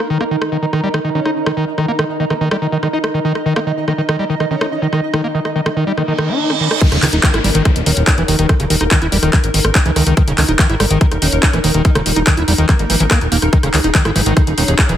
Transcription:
Already playing: D#4 A#4 A#5
0.10 D#3 D#5
0.21 A#3, cross-stick
0.31 D#3
0.42 cross-stick
0.52 D#3
0.62 D#3
0.73 D#3, cross-stick
0.83 G3
0.94 D#3, cross-stick
1.05 D#3
1.15 D#3 C#4
1.25 D#4, cross-stick
1.46 D#3, cross-stick
1.57 D#3
1.78 D#3, cross-stick
1.88 A#3
1.99 D#3, cross-stick
2.20 D#3
2.30 D#3 A#3, cross-stick
2.41 D#3 A#3
2.51 G3, cross-stick
2.62 D#3
2.72 D#3
2.83 D#3, cross-stick
2.93 D#4
3.04 cross-stick
3.14 D#3
3.25 D#3
3.35 cross-stick
3.46 D#3
3.56 A#3, cross-stick
3.67 D#3
3.88 D#3, cross-stick
3.98 D#3
4.09 D#3, cross-stick
4.19 G3
4.30 D#3
4.40 D#3, cross-stick
4.51 D#3 C#4
4.61 D#4, cross-stick
4.82 D#3
4.93 D#3, cross-stick
5.14 D#3 D#4, cross-stick
5.24 A#3
5.35 D#3
5.45 cross-stick
5.56 D#3
5.66 D#3, cross-stick
5.77 D#3
5.87 G3
5.98 D#3 A#3, cross-stick, reverse cymbal
6.08 D#3
6.18 D#3, cross-stick
6.29 D#4
6.50 A#3, cross-stick
6.60 D#3
6.71 cross-stick
6.81 D#3 D#4 A#4, kick, closed hi-hat, crash, downlifter
6.92 D#1 C#3, cross-stick, closed hi-hat
7.02 C#2 D#3, clap, open hi-hat
7.13 D#1 D#4, closed hi-hat
7.23 D#3, kick, clap, closed hi-hat
7.34 G#1 E4, cross-stick, closed hi-hat
7.44 G#1 G3, open hi-hat
7.55 G#1 D#3, closed hi-hat
7.65 D#3, kick, cross-stick, closed hi-hat
7.76 D#1, closed hi-hat
7.86 D#1 D#3 C#4, open hi-hat
7.97 D#1, closed hi-hat
8.07 kick, cross-stick, clap, closed hi-hat
8.18 D#1 E3, closed hi-hat
8.28 D#1 D#3, open hi-hat
8.39 D#1 D#3, closed hi-hat
8.49 D#3, kick, cross-stick, closed hi-hat
8.60 D#1 C#3, closed hi-hat
8.70 D#1 D#3, open hi-hat
8.81 D#1 D#4, cross-stick, closed hi-hat
8.91 D#3, kick, clap, closed hi-hat
9.02 D#1 A#3 E4, closed hi-hat
9.12 E1 G3 A#3, open hi-hat
9.23 D#1 D#3, cross-stick, closed hi-hat
9.33 D#3, kick, clap, closed hi-hat
9.44 G#1, closed hi-hat
9.54 G#1 D#3, open hi-hat
9.65 G#1, cross-stick, closed hi-hat
9.75 kick, clap, closed hi-hat
9.86 C#2 E3, closed hi-hat
9.96 C#2 D#3, cross-stick, open hi-hat
10.07 C#2 D#3, closed hi-hat
10.17 D#3, kick, closed hi-hat
10.28 D#1 C#3, closed hi-hat
10.38 C#2 D#3, cross-stick, clap, open hi-hat
10.49 D#1 D#4, closed hi-hat
10.59 D#3, kick, clap, closed hi-hat
10.70 G#1 E4, closed hi-hat
10.80 G#1 G3, cross-stick, open hi-hat
10.90 G#1 D#3, closed hi-hat
11.01 kick, closed hi-hat
11.12 D#1, cross-stick, closed hi-hat
11.22 D#1 D#3 C#4, open hi-hat
11.32 D#1, closed hi-hat
11.43 kick, clap, closed hi-hat
11.53 D#1 E3, cross-stick, closed hi-hat
11.64 D#1 D#3, open hi-hat
11.74 D#1 D#3, closed hi-hat
11.85 D#4, kick, closed hi-hat
11.95 D#1 C#3, cross-stick, closed hi-hat
12.06 D#1 D#3, open hi-hat
12.16 D#1 D#4, closed hi-hat
12.27 D#3, kick, cross-stick, clap, closed hi-hat
12.37 D#1 E4, closed hi-hat
12.48 E1 G3, open hi-hat
12.58 D#1 D#3, closed hi-hat
12.69 A#3, kick, cross-stick, clap, closed hi-hat
12.79 G#1, closed hi-hat
12.90 G#1 E3, open hi-hat
13.00 G#1 E3, closed hi-hat
13.11 A#3, kick, cross-stick, clap, closed hi-hat
13.21 D#1, closed hi-hat
13.32 D#1 A#3, open hi-hat
13.42 D#1, cross-stick, closed hi-hat
13.53 D#3 G#4, kick, closed hi-hat
13.63 D#1 C#3, cross-stick, closed hi-hat
13.74 C#2 D#3, clap, open hi-hat
13.84 D#1 D#4, closed hi-hat
13.95 D#3, kick, clap, closed hi-hat
14.05 G#1 E4, cross-stick, closed hi-hat
14.16 G#1 E3, open hi-hat
14.26 G#1 D#3, closed hi-hat
14.37 D#3, kick, cross-stick, closed hi-hat
14.47 D#1, closed hi-hat
14.58 D#1 D#3 C#4, open hi-hat
14.68 D#1, closed hi-hat
14.79 kick, cross-stick, clap, closed hi-hat
14.89 D#1 E3, closed hi-hat

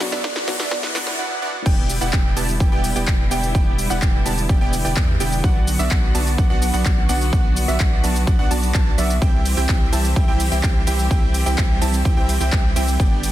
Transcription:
Already playing: B2 F#3 D4 F#4, riser
0.00 B2 F#3 B3 D4 F#4, snare, open hi-hat
0.12 B3 D4 F#4 D5 E5, snare
0.24 B3 D4 F#4 D5 F#5, kick, snare
0.36 snare
0.47 B2 F#3 B3 D4 F#4, snare, open hi-hat
0.59 B3 D4 F#4 D5 E5, snare
0.71 B2 F#3 B3 D4 F#4 D5 F#5, kick, snare, swell
0.83 snare
0.94 B2 F#3 B3 D4 F#4 D5 F#5, snare, open hi-hat
1.07 snare
1.19 B3 D4 F#4 D5 F#5
1.42 B3 D4 F#4 D5 F#5
1.66 E1 D3 G3 B3 E4 G4 D5 G5, kick, crash, shaker
1.90 open hi-hat, shaker
2.01 E1 B3 E4 G4 D5 F#5, shaker
2.13 E1 D5 G5, kick, clap, shaker
2.37 E1 B3 E4 G4 D5 A5, open hi-hat, shaker
2.49 shaker
2.60 E1 B3 E4 G4 D5 G5, kick, shaker
2.72 E1 B3 E4 G4 D5 G5
2.84 open hi-hat, shaker
2.96 E1 B3 E4 G4 D5 G5, shaker
3.08 E1 G5, kick, clap, shaker
3.31 E1 B3 E4 G4 D5 G5, open hi-hat, shaker
3.43 shaker
3.55 E1 B3 E4 G4 D5 G5, kick, shaker
3.78 open hi-hat, shaker
3.90 E1 B3 E4 G4 D5 F#5, shaker
4.02 E1 B3 E4 G4 D5 G5, kick, clap, shaker
4.26 E1 B3 E4 G4 D5 A5, open hi-hat, shaker
4.38 shaker
4.49 E1 B3 E4 G4 D5 G5, kick, shaker
4.61 E1 B3 E4 G4 D5 G5
4.73 open hi-hat, shaker
4.85 E1 B3 E4 G4 D5 G5, shaker
4.96 E2 B3 E4 G4 D5 G5, kick, clap, shaker
5.20 E1 B3 E4 G4 D5 G5, open hi-hat, shaker
5.32 shaker
5.44 B1 F#3 B3 D4 F#4 D5 F#5, kick, shaker
5.67 open hi-hat, shaker
5.79 B1 B3 D4 F#4 D5 E5, shaker
5.91 B1 B3 D4 F#4 F#5, kick, clap, shaker
6.15 B1 B3 D4 F#4 D5 A5, open hi-hat, shaker
6.27 shaker
6.38 B1 B3 D4 F#4 D5 F#5, kick, shaker
6.50 B1 B3 D4 F#4 D5 F#5
6.62 open hi-hat, shaker
6.74 B1 B3 D4 F#4 D5 F#5, shaker
6.86 B1 B3 D4 F#4 F#5, kick, clap, shaker
7.09 B1 B3 D4 F#4 D5 F#5, open hi-hat, shaker
7.21 shaker
7.33 B1 B3 D4 F#4 D5 F#5, kick, shaker
7.57 open hi-hat, shaker
7.68 B1 B3 D4 F#4 D5 E5, shaker
7.80 B1 B3 D4 F#5, kick, clap, shaker
8.04 B1 B3 D4 F#4 D5 A5, open hi-hat, shaker
8.16 shaker
8.27 B1 B3 D4 F#4 D5 F#5, kick, shaker
8.39 B1 B3 D4 F#4 D5 F#5
8.51 B1 B3 D4 F#4 D5 A5, open hi-hat, shaker
8.63 shaker
8.74 B1 B3 F#4 A5, kick, clap, shaker
8.98 B1 B3 D4 F#4 D5 E5, open hi-hat, shaker
9.10 shaker
9.21 C2 E3 G3 C4 E4 G4 E5 G5, kick, ride, shaker
9.45 open hi-hat, ride, shaker
9.57 C2 C4 E4 G4 E5 G5, shaker
9.69 C2 C4 G4 G5, kick, clap, ride, shaker
9.93 C2 C4 E4 G4 E5 A5, open hi-hat, ride, shaker
10.05 shaker
10.16 C2 C4 E4 G4 E5 G5, kick, ride, shaker
10.28 C2 C4 E4 G4 E5 G5
10.40 open hi-hat, ride, shaker
10.52 C2 C4 E4 G4 E5 G5, shaker
10.63 C2 C4 E4 G4 E5 G5, kick, clap, ride, shaker
10.87 C2 C4 E4 G4 E5 G5, open hi-hat, ride, shaker
10.99 shaker
11.11 C2 C4 E4 G4 E5 G5, kick, ride, shaker
11.34 open hi-hat, ride, shaker
11.46 C2 C4 E4 G4 E5 G5, shaker
11.58 C2 C4 E4 G4 E5 G5, kick, clap, ride, shaker
11.82 C2 C4 E4 G4 E5 A5, open hi-hat, ride, shaker
11.94 shaker
12.05 C2 C4 E4 G4 E5 G5, kick, ride, shaker
12.17 C2 C4 E4 G4 E5 G5
12.29 open hi-hat, ride, shaker
12.40 C2 C4 E4 G4 E5 G5, shaker
12.52 C2 C4 E4 G4, kick, clap, ride, shaker
12.76 C2 C4 E4 G4 E5 G5, open hi-hat, ride, shaker
12.88 shaker
13.00 G1 D3 B3 D4 G4 D5 G5, kick, ride, shaker
13.23 open hi-hat, ride, shaker

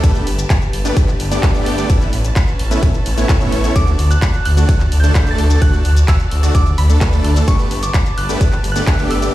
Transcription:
0.04 G1 A3 B3 D4 G4 B4 A5, kick, closed hi-hat, ride, shaker
0.15 closed hi-hat, shaker
0.27 G1, open hi-hat
0.39 closed hi-hat, shaker
0.50 G1, kick, clap, closed hi-hat, ride, shaker
0.62 closed hi-hat, shaker
0.73 G1, open hi-hat
0.85 A3 B3 D4 G4 B4, closed hi-hat, shaker
0.97 G1, kick, closed hi-hat, ride, shaker
1.08 clap, closed hi-hat, shaker
1.20 G1, open hi-hat
1.32 A3 B3 D4 G4 D5, closed hi-hat, shaker
1.43 G1 A3 B3 D4 G4, kick, clap, closed hi-hat, ride, shaker
1.55 A3 B3 D4 G4 D5, closed hi-hat, shaker
1.66 G1, open hi-hat
1.78 A3 B3 D4 G4 D5, closed hi-hat, shaker
1.90 A1 B3 C#4 E4 B4, kick, closed hi-hat, ride, shaker
2.01 closed hi-hat, shaker
2.13 A1, open hi-hat
2.25 closed hi-hat, shaker
2.36 A1, kick, clap, closed hi-hat, ride, shaker
2.48 closed hi-hat, shaker
2.59 A1, open hi-hat
2.71 A3 B3 C#4 E4 B4, closed hi-hat, shaker
2.83 A1, kick, closed hi-hat, ride, shaker
2.94 closed hi-hat, shaker
3.06 A1, open hi-hat
3.18 A3 B3 C#4 E4 C#5, closed hi-hat, shaker
3.29 A2 C#4 E4, kick, clap, closed hi-hat, ride, shaker
3.41 A3 B3 C#4 E4 C#5, closed hi-hat, shaker
3.52 A1, open hi-hat
3.64 A3 B3 C#4 E4 C#5, closed hi-hat, shaker
3.76 D2 A3 D4 F#4 D5 D6, kick, closed hi-hat, ride, shaker
3.87 closed hi-hat, shaker
3.99 D2, open hi-hat
4.11 F#6, closed hi-hat, shaker
4.22 D2, kick, clap, closed hi-hat, ride, shaker
4.34 closed hi-hat, shaker
4.45 D2 F#6, open hi-hat
4.57 A3 D4 F#4, closed hi-hat, shaker
4.69 D2, kick, closed hi-hat, ride, shaker
4.80 clap, closed hi-hat, shaker
4.92 D2, open hi-hat
5.00 A3 D4 A4 G6, closed hi-hat
5.04 shaker
5.15 D2 A3 D4 B4, kick, clap, closed hi-hat, ride, shaker
5.27 A3 D4 A4 A6, closed hi-hat, shaker
5.38 D2, open hi-hat
5.50 A3 D4 A4, closed hi-hat, shaker
5.62 D2 A3 D4 F#4 F#6, kick, closed hi-hat, ride, shaker
5.73 closed hi-hat, shaker
5.85 D2, open hi-hat
5.97 closed hi-hat, shaker
6.08 D2 E6, kick, clap, closed hi-hat, ride, shaker
6.20 closed hi-hat, shaker
6.31 D2, open hi-hat
6.43 A3 D4 F#4, closed hi-hat, shaker
6.55 D2 D6, kick, closed hi-hat, ride, shaker
6.66 closed hi-hat, shaker
6.78 D2 B5, open hi-hat
6.90 A3 D4 A4, closed hi-hat, shaker
7.01 D2 A3 D4 B4, kick, clap, closed hi-hat, ride, shaker
7.13 A3 D4 A4, closed hi-hat, shaker
7.24 D2, open hi-hat
7.36 A3 D4 A4, closed hi-hat, shaker
7.48 G1 A3 B3 D4 G4 B4 A5 C#6, kick, closed hi-hat, ride, shaker
7.59 closed hi-hat, shaker
7.71 G1, open hi-hat
7.83 D6, closed hi-hat, shaker
7.94 G1, kick, clap, closed hi-hat, ride, shaker
8.06 closed hi-hat, shaker
8.17 G1 F#6, open hi-hat
8.29 A3 B3 D4 G4 B4, closed hi-hat, shaker
8.41 G1, kick, closed hi-hat, ride, shaker
8.52 clap, closed hi-hat, shaker
8.64 G1, open hi-hat
8.72 A3 B3 D4 G4 D5 F#6, closed hi-hat
8.76 shaker
8.87 G1 A3 B3 D4 G4 E5, kick, clap, closed hi-hat, ride, shaker
8.99 A3 B3 D4 G4 D5, closed hi-hat, shaker
9.11 G1 E6, open hi-hat
9.22 A3 B3 D4 G4 D5, closed hi-hat, shaker

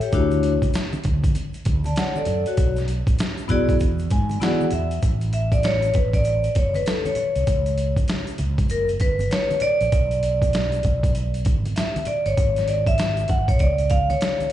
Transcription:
0.01 G4 C#5, closed hi-hat, shaker
0.12 D2 A3 D4 E4 F#4 C#5, kick, closed hi-hat, shaker
0.31 closed hi-hat, high conga, shaker
0.43 closed hi-hat, shaker
0.62 C#2, kick, closed hi-hat, shaker
0.74 snare, closed hi-hat, shaker
0.93 closed hi-hat, high conga, shaker
1.04 D2, kick, closed hi-hat, low conga, shaker
1.24 kick, closed hi-hat, shaker
1.35 closed hi-hat, high conga, shaker
1.54 closed hi-hat, shaker
1.65 D2, kick, closed hi-hat, low conga, shaker
1.84 D5 A5, closed hi-hat, high conga, shaker
1.96 C#5 F#5, snare, closed hi-hat, shaker
2.16 A4 D5, high conga, shaker
2.25 F#2, closed hi-hat, low conga, shaker
2.46 F#4 C#5, closed hi-hat, shaker
2.57 B1, kick, closed hi-hat, shaker
2.76 snare, closed hi-hat, shaker
2.88 closed hi-hat, shaker
3.07 A1, kick, closed hi-hat, shaker
3.19 snare, closed hi-hat, shaker
3.38 closed hi-hat, shaker
3.48 B1 B3 E4 F#4 G#4 D5, kick, closed hi-hat, low conga, shaker
3.68 kick, closed hi-hat, shaker
3.80 E2, kick, closed hi-hat, high conga, shaker
3.99 closed hi-hat, shaker
4.10 G#2 G#5, kick, closed hi-hat, low conga, shaker
4.29 closed hi-hat, high conga, shaker
4.40 E3 B3 E4 F#4 G#4 D5 F#5, snare, closed hi-hat, shaker
4.61 high conga, shaker
4.71 E2 E5, closed hi-hat, low conga, shaker
4.91 closed hi-hat, shaker
5.02 A1, kick, closed hi-hat, shaker
5.21 closed hi-hat, shaker
5.33 E5, closed hi-hat, shaker
5.52 D5, kick, closed hi-hat, shaker
5.63 C#5, snare, closed hi-hat, shaker
5.82 closed hi-hat, shaker
5.94 A1 B4, kick, closed hi-hat, low conga, shaker
6.13 D5, kick, closed hi-hat, shaker
6.24 closed hi-hat, shaker
6.44 closed hi-hat, shaker
6.55 F#1 C#5, kick, closed hi-hat, low conga, shaker
6.74 B4, closed hi-hat, high conga, shaker
6.86 A4, snare, closed hi-hat, shaker
7.05 C#5, closed hi-hat, high conga, shaker
7.15 closed hi-hat, low conga, shaker
7.36 C2, closed hi-hat, shaker
7.47 C#2, kick, closed hi-hat, shaker
7.66 closed hi-hat, shaker
7.78 closed hi-hat, shaker
7.96 kick, closed hi-hat, shaker
8.08 snare, closed hi-hat, shaker
8.27 closed hi-hat, shaker
8.38 C#2, closed hi-hat, low conga, shaker
8.58 kick, closed hi-hat, shaker
8.69 F#1 A#4, closed hi-hat, shaker
8.88 closed hi-hat, shaker
9.00 G1 B4, kick, closed hi-hat, low conga, shaker
9.19 closed hi-hat, high conga, shaker
9.31 C#5, snare, closed hi-hat, shaker
9.51 closed hi-hat, high conga, shaker
9.60 D5, closed hi-hat, low conga, shaker
9.81 A#1, closed hi-hat, shaker
9.92 B1, kick, closed hi-hat, shaker
10.11 closed hi-hat, shaker
10.23 closed hi-hat, shaker
10.42 kick, closed hi-hat, shaker
10.53 snare, closed hi-hat, shaker
10.72 closed hi-hat, shaker
10.83 B1, kick, closed hi-hat, low conga, shaker
11.03 kick, closed hi-hat, shaker
11.15 closed hi-hat, shaker
11.34 closed hi-hat, shaker
11.45 G#1, kick, closed hi-hat, low conga, shaker
11.65 closed hi-hat, high conga, shaker
11.76 E5, snare, closed hi-hat, shaker
11.96 closed hi-hat, high conga, shaker
12.05 D5, closed hi-hat, low conga, shaker
12.26 G1 C#5, closed hi-hat, shaker
12.37 G#1, kick, closed hi-hat, shaker
12.56 snare, closed hi-hat, shaker
12.68 D5, closed hi-hat, shaker
12.87 E5, kick, closed hi-hat, shaker
12.98 snare, closed hi-hat, shaker
13.17 closed hi-hat, shaker
13.28 G#1 F#5, kick, closed hi-hat, low conga, shaker
13.48 C#5, kick, closed hi-hat, shaker
13.59 C#2 D5, kick, closed hi-hat, shaker
13.78 closed hi-hat, shaker
13.90 F5, kick, closed hi-hat, shaker
14.10 C#5, closed hi-hat, high conga, shaker
14.21 snare, closed hi-hat, shaker
14.40 closed hi-hat, high conga, shaker

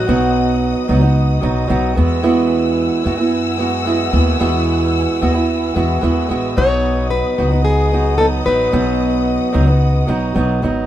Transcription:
Already playing: F#4 B4 D#5 F#5 D#6
0.07 B1 B2 F#3 B3 D#4 F#4
0.88 C#2 F#3 B3 D#4 F#4
1.01 B3 D#4 F#4
1.41 B1 F#3 B3 D#4 F#4
1.68 B1 F#3 B3 D#4 F#4
1.95 E2 G#3 B3 E4 F#4
1.99 F#5 G#5 E6
2.23 E3 G#3 B3 E4 F#4
3.04 F#2 G#3 B3 E4 F#4
3.17 B3 E4 F#4
3.57 G#3 B3 E4 F#4
3.85 G#3 B3 E4 F#4
4.12 D#2 G#3 B3 E4 F#4
4.39 E2 E3 G#3 B3 E4 F#4
5.20 D#2 G#3 B3 E4 F#4
5.34 B3 E4 F#4
5.74 E2 G#3 B3 E4 F#4
6.01 D#2 G#3 B3 E4 F#4
6.29 A1 G#3 B3 E4 F#4
6.56 B1 B2 F#3 B3 D#4 F#4 C#5 D#5 F#5 D#6
7.11 B4
7.37 C#2 F#3 B3 D#4 F#4
7.50 B3 D#4 F#4
7.65 G#4
7.92 F#3 B3 D#4 F#4
8.18 F#3 B3 D#4 F#4 A4
8.45 A1 F#3 B3 D#4 F#4 B4
8.72 B1 B2 F#3 B3 D#4 F#4
9.53 C#2 F#3 B3 D#4 F#4
9.67 B3 D#4 F#4
10.07 B1 F#3 B3 D#4 F#4
10.34 B1 F#3 B3 D#4 F#4
10.62 G#1 F#3 B3 D#4 F#4

